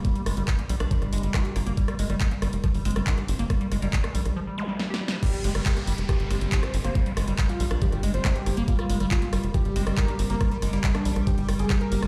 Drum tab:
CC |------------------------------------------------------------------------------------------------|------------------------------------------------------------------------------------------------|------------------------------------------------------------------------------------------------|x-----------------------------------------------------------------------------------------------|
HH |x-----x-----o-----x-----x-----x-----o-----x-----x-----x-----o--x--x-----x-----x-----o-----x-----|x-----x-----o-----x-----x-----x-----o-----x-----x-----o-----o--x--x-----x-----x-----o-----x-----|x-----x-----o-----x-----x-----x-----o-----x-----------------------------------------------------|x-----x-----o-----x-----x-----x-----o-----x-----x-----x-----o-----x-----x-----x-----o-----x-----|
CP |------------------------x-----------------------------------------------x-----------------------|------------------------x-----------------------------------------------x-----------------------|------------------------x-----------------------------------------------------------------------|------------------------x-----------------------------------------------x-----------------------|
SD |------------r-----------r-----------------r-----------r-----------------r-----------r-----------|------r-----------r-----------------r-----------r-----------------r-----------r-----------------|r-----------r-----------------r-----------r-----------------------------o-------o-------o-------|r-----------------r-----------r-----------------r-----------r-----------------r-----------r-----|
BD |o-----------------------o-----------------------o-----------------------o-----------------------|o-----------------------o-----------------------o-----------------------o-----------------------|o-----------------------o-----------------------------------------------------------------------|o-----------------------o-----------------------o-----------------------o-----------------------|

CC |------------------------------------------------------------------------------------------------|------------------------------------------------------------------------------------------------|------------------------------------------------------------------------------------------------|
HH |x-----x-----o-----x-----x-----x-----o-----x-----x-----x-----o-----x-----x-----x-----o-----x-----|x-----x-----o-----x-----x-----x-----o-----x-----x-----x-----o-----x-----x-----x-----o-----x-----|x-----x-----o-----x-----x-----x-----o-----x-----x-----x-----o-----x-----x-----x-----o-----x-----|
CP |------------------------x-----------------------------------------------x-----------------------|------------------------x-----------------------------------------------x-----------------------|------------------------x-----------------------------------------------x-----------------------|
SD |------------r-----------r-----------------r-----------r-----------------r-----------r-----------|------r-----------r-----------------r-----------r-----------------r-----------r-----------------|r-----------r-----------------r-----------r-----------------r-----------r-----------------r-----|
BD |o-----------------------o-----------------------o-----------------------o-----------------------|o-----------------------o-----------------------o-----------------------o-----------------------|o-----------------------o-----------------------o-----------------------o-----------------------|